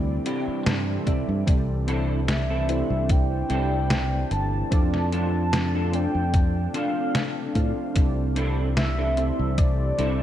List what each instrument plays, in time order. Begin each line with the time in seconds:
Already playing: fingered electric bass D2, ambient pad C3 E3 G3 C4, synth keys C4 E4 G4 A4 D5
0.25 clean electric guitar C4 D4 E4 G4, closed hi-hat
0.48 muted fingered electric bass stroke
0.66 fingered electric bass G2, clean electric guitar A5, snare, closed hi-hat
1.06 fingered electric bass C2, synth keys C4 E4 G4 A4 E5, clean electric guitar D5, muted clean electric guitar stroke, kick, closed hi-hat
1.28 fingered electric bass G2, muted clean electric guitar stroke
1.46 fingered electric bass C2, ambient pad A3 D4, synth keys C4 E4 G4 A4 D5, kick, closed hi-hat
1.87 clean electric guitar C4 D4 E4 A4, closed hi-hat
2.28 soft synth lead E5, snare, closed hi-hat
2.49 clean electric guitar C4 D4 E4 A4
2.68 synth keys C4 E4 G4 A4 C5, closed hi-hat
2.90 fingered electric bass C2
3.09 soft synth lead G5, kick, closed hi-hat
3.49 fingered electric bass C2, synth keys C4 E4 G4 A4 D5, clean electric guitar C4 D4 E4 A4, closed hi-hat
3.90 snare, closed hi-hat
4.31 fingered electric bass G1, soft synth lead A5, muted clean electric guitar stroke, closed hi-hat
4.53 muted clean electric guitar stroke
4.70 fingered electric bass F2, ambient pad F3, synth keys C4 D4 F4 A4 D5, soft synth lead A5, kick, closed hi-hat
4.94 snare
5.12 clean electric guitar C4 D4 F4 A4, closed hi-hat
5.53 snare, closed hi-hat
5.74 clean electric guitar C4 D4 F4 A4
5.92 synth keys C4 D4 F4 A4 D5, soft synth lead G5, closed hi-hat
6.15 fingered electric bass F2
6.34 kick, closed hi-hat
6.74 clean electric guitar C4 D4 F4 A4, soft synth lead F5, closed hi-hat
7.15 snare, closed hi-hat
7.54 fingered electric bass A2, synth keys C4 D4 F4 A4 F5, muted clean electric guitar stroke, kick, closed hi-hat
7.77 muted clean electric guitar stroke
7.94 fingered electric bass C2, ambient pad C3 E3, synth keys C4 E4 G4 A4 D5, kick, closed hi-hat
8.36 clean electric guitar C4 D4 E4 A4, closed hi-hat
8.77 soft synth lead E5, snare, closed hi-hat
8.98 clean electric guitar C4 D4 E4 A4
9.17 synth keys C4 E4 G4 A4 C5, closed hi-hat
9.39 fingered electric bass C2
9.58 soft synth lead D5, kick, closed hi-hat
9.98 fingered electric bass C2, clean electric guitar C4 D4 E4 A4, synth keys C4 E4 G4 A4 D5, closed hi-hat